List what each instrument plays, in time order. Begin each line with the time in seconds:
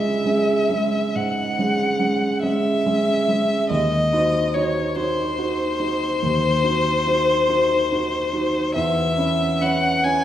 Already playing: grand piano C#2 G#3 C#4 G#4, violin E5
0.25 grand piano G#3 C#4 G#4
0.70 grand piano G#3 C#4 G#4
1.15 grand piano G#2, violin F#5
1.59 grand piano G#3 C#4 G#4
1.99 grand piano G#3 C#4 G#4
2.43 grand piano G#3 C#4 G#4, violin E5
2.86 grand piano G#3 C#4 G#4
3.28 grand piano G#3 C#4 G#4
3.70 grand piano D#2, violin D#5
4.13 grand piano D#4 F#4 C5
4.54 grand piano D#4 F#4 C5, violin C#5
4.96 grand piano D#4 F#4 C5, violin C5
5.38 grand piano D#4 F#4 C5
5.80 grand piano D#4 F#4 C5
6.22 grand piano D#2
6.64 grand piano D#4 F#4 C5
7.06 grand piano D#4 F#4 C5
7.49 grand piano D#4 F#4 C5
7.92 grand piano D#4 F#4 C5
8.33 grand piano D#4 F#4 C5
8.75 grand piano E2, violin E5
9.18 grand piano C#4 E4 C#5
9.61 grand piano C#4 E4 C#5, violin F#5
10.04 grand piano C#4 E4 C#5, violin G#5